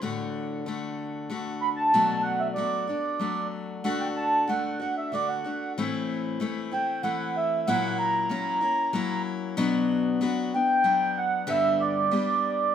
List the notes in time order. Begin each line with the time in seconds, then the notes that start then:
0.02 A2 D3 A3 D4 F#4
0.66 D3 A3 D4 F#4
1.30 D3 A3 D4 F#4
1.62 B5
1.76 A5
1.94 B2 F#3 A3 D4 F#4
2.23 F#5
2.40 E5
2.54 F#3 A3 D5
2.58 D4 F#4
2.87 A3 D4 F#4
3.19 F#3 A3 D4 F#4
3.84 D3 A3 D4 F#4 F#5
4.00 G5
4.16 A5
4.47 D3 A3 D4 F#4 F#5
4.79 A3 D4 F#4 F#5
4.97 E5
5.12 D3 A3 D4 F#4 D5
5.28 F#5
5.44 A3 D4 F#4
5.78 A2 E3 A3 C4 E4
6.40 E3 A3 C4 E4
6.71 A3 C4 E4 G5
7.03 E3 A3 C4 E4 F#5
7.37 E5
7.67 A#2 F#3 A#3 C#4 E4 F#5
7.99 A#5
8.29 F#3 A#3 C#4 E4
8.61 A#3 C#4 E4
8.93 F#3 A#3 C#4 E4
9.57 B2 F#3 B3 D4 F#4
10.21 F#3 B3 D4 F#4
10.54 B3 D4 G5
10.84 F#3 B3 D4
11.18 F#5
11.47 G2 D3 G3 B3 D4 G4 E5
11.81 D5
12.11 G3 B3 D4 G4